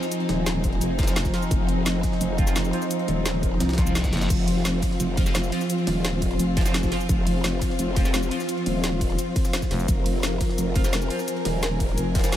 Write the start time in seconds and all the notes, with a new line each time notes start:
Already playing: F3 C4 D#4 F4 C5 G#5
0.03 snare, cabasa
0.12 closed hi-hat, cabasa
0.20 closed hi-hat
0.29 D#1, snare, closed hi-hat
0.46 snare, closed hi-hat, cabasa
0.64 kick, closed hi-hat, cabasa
0.73 closed hi-hat
0.81 F1, closed hi-hat, cabasa
0.99 F3 C4 F4, kick, snare, closed hi-hat, cabasa
1.03 snare, closed hi-hat
1.07 F3 C4 F4, snare, closed hi-hat, cabasa
1.16 snare, closed hi-hat, cabasa
1.25 kick, snare, cabasa
1.34 F3 C4 F4, snare, closed hi-hat, open hi-hat
1.42 cabasa
1.51 F1, kick, closed hi-hat, cabasa
1.69 closed hi-hat
1.81 F5
1.86 snare, closed hi-hat, cabasa
2.03 kick, snare, closed hi-hat, cabasa
2.12 snare
2.21 F1, closed hi-hat, cabasa
2.38 F3 C4 F4, kick, closed hi-hat, cabasa
2.47 F3 C4 F4, snare, cabasa
2.56 snare, closed hi-hat, cabasa
2.65 cabasa
2.73 F3 C4 F4, closed hi-hat
2.82 snare, cabasa
2.91 closed hi-hat, cabasa
2.99 closed hi-hat
3.08 D#1, closed hi-hat
3.26 snare, closed hi-hat, cabasa
3.43 kick, closed hi-hat, cabasa
3.60 C2, snare, closed hi-hat, reverse cymbal, cabasa
3.69 snare, closed hi-hat
3.73 snare, closed hi-hat
3.78 F3 C4 F4, kick, snare, closed hi-hat, cabasa
3.87 F3 C4 F4, cabasa
3.95 snare, closed hi-hat, cabasa
4.04 kick, snare, closed hi-hat, cabasa
4.13 F#1, snare, closed hi-hat
4.17 snare, closed hi-hat
4.21 snare, closed hi-hat, cabasa
4.30 F1 F4, kick, closed hi-hat, crash, cabasa
4.48 closed hi-hat, ride
4.60 G#5
4.65 snare, closed hi-hat, cabasa
4.82 kick, snare, closed hi-hat, ride, cabasa
4.91 snare
5.00 F1, closed hi-hat, cabasa
5.17 F3 C4 F4, kick, closed hi-hat, ride, cabasa
5.26 F3 C4 F4, snare, cabasa
5.35 snare, closed hi-hat, cabasa
5.44 cabasa
5.52 F3 C4 F4, closed hi-hat, ride
5.61 snare, cabasa
5.70 closed hi-hat, cabasa
5.78 closed hi-hat
5.87 D#1, snare, closed hi-hat, ride
6.05 snare, closed hi-hat, cabasa
6.22 kick, closed hi-hat, ride, cabasa
6.31 closed hi-hat
6.39 F1, closed hi-hat, cabasa
6.57 F3 C4 F4, kick, snare, closed hi-hat, ride, cabasa
6.61 snare, closed hi-hat
6.66 F3 C4 F4, snare, closed hi-hat, cabasa
6.74 snare, closed hi-hat, cabasa
6.83 kick, snare, cabasa
6.92 F3 C4 F4, snare, closed hi-hat, open hi-hat, ride
7.00 cabasa
7.09 F1, kick, closed hi-hat, cabasa
7.27 closed hi-hat, ride
7.39 F5
7.44 snare, closed hi-hat, cabasa
7.62 kick, snare, closed hi-hat, ride, cabasa
7.70 snare
7.79 F1, closed hi-hat, cabasa
7.96 F3 C4 F4, kick, snare, closed hi-hat, ride, cabasa
8.05 F3 C4 F4, snare, cabasa
8.14 snare, closed hi-hat, cabasa
8.23 cabasa
8.31 F3 C4 F4, closed hi-hat, ride
8.40 snare, cabasa
8.49 closed hi-hat, cabasa
8.57 closed hi-hat
8.66 D#1, closed hi-hat, ride
8.84 snare, closed hi-hat, cabasa
9.01 kick, closed hi-hat, ride, cabasa
9.10 closed hi-hat
9.19 closed hi-hat, cabasa
9.36 kick, closed hi-hat, ride, cabasa
9.45 snare, cabasa
9.53 snare, closed hi-hat, cabasa
9.62 kick, snare, cabasa
9.71 F1, snare, closed hi-hat, open hi-hat, ride
9.80 cabasa
9.88 F1 A#4, kick, closed hi-hat, cabasa
10.06 closed hi-hat, ride
10.18 G#5
10.23 snare, closed hi-hat, cabasa
10.41 kick, snare, closed hi-hat, ride, cabasa
10.49 snare
10.58 F1, closed hi-hat, cabasa
10.76 F3 C4 F4, kick, closed hi-hat, ride, cabasa
10.84 F3 C4 F4, snare, cabasa
10.93 snare, closed hi-hat, cabasa
11.02 cabasa
11.10 F3 C4 F4, closed hi-hat, ride
11.19 snare, cabasa
11.28 closed hi-hat, cabasa
11.37 closed hi-hat
11.45 D#1, snare, closed hi-hat, ride
11.63 snare, closed hi-hat, cabasa
11.80 kick, closed hi-hat, ride, cabasa
11.89 closed hi-hat
11.98 F1, closed hi-hat, cabasa
12.15 F3 C4 F4, kick, snare, closed hi-hat, ride, cabasa
12.19 snare, closed hi-hat
12.24 F3 C4 F4, snare, closed hi-hat, cabasa
12.32 snare, closed hi-hat, cabasa